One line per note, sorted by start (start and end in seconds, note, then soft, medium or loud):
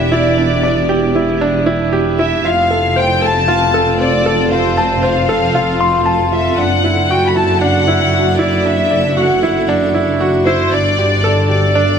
0.00 2.42 E1 medium
0.00 2.44 B3 medium
0.00 0.38 D4 loud
0.00 0.12 E4 loud
0.00 2.45 E4 medium
0.00 0.89 G4 medium
0.00 4.03 G4 medium
0.00 3.66 D5 medium
0.00 0.11 E5 loud
0.11 0.36 E4 loud
0.11 1.15 D5 medium
0.38 0.62 D4 medium
0.63 0.78 D5 loud
0.89 1.14 G4 loud
1.16 1.40 E4 medium
1.41 1.66 D4 loud
1.66 1.91 E4 loud
1.93 2.07 G4 loud
2.19 2.43 E4 loud
2.19 2.43 E5 medium
2.45 6.56 F1 medium
2.45 7.54 C4 medium
2.45 2.69 F4 medium
2.45 6.58 F4 medium
2.45 2.97 F5 loud
2.61 11.99 A4 medium
2.70 2.95 A4 medium
2.70 6.59 F5 medium
2.96 3.21 C5 loud
2.96 3.23 G5 loud
3.22 3.47 A4 medium
3.22 4.00 A5 loud
3.48 3.73 F4 loud
3.74 3.99 A4 loud
4.00 4.24 C5 medium
4.00 4.49 D5 loud
4.26 4.50 A4 loud
4.52 4.76 F4 medium
4.52 5.04 C5 medium
4.77 4.92 A5 loud
5.03 5.28 C5 loud
5.03 6.08 F5 medium
5.29 5.54 A4 loud
5.55 5.79 F4 loud
5.81 6.05 C6 loud
6.06 6.31 A5 loud
6.32 6.57 F4 medium
6.32 6.57 E5 medium
6.58 10.69 F#1 medium
6.58 6.83 D4 medium
6.58 11.99 D4 medium
6.58 7.10 F#5 loud
6.63 10.72 F#4 medium
6.84 7.09 E4 medium
6.90 11.99 E5 medium
7.11 7.35 F#4 loud
7.11 7.30 G5 loud
7.28 7.35 B5 medium
7.35 7.60 E4 medium
7.35 7.62 A5 loud
7.61 7.86 D4 loud
7.61 8.36 F#5 loud
7.88 8.12 E4 loud
8.13 8.38 F#4 medium
8.39 8.64 E4 loud
8.39 8.66 D5 medium
8.65 8.90 D4 medium
8.65 9.17 E5 loud
8.91 9.06 D5 medium
9.17 9.41 F#4 loud
9.17 9.69 F#5 medium
9.43 9.67 E4 loud
9.69 9.93 D4 loud
9.94 10.19 E4 loud
10.21 10.35 F#4 loud
10.46 10.71 E4 loud
10.46 10.70 C5 loud
10.72 11.99 G1 loud
10.72 10.97 D4 medium
10.72 11.47 D5 loud
10.97 11.99 G4 medium
10.97 11.23 G4 medium
11.24 11.48 A4 loud
11.37 11.99 G5 medium
11.48 11.74 G4 medium
11.48 11.99 D5 loud
11.75 11.99 D4 loud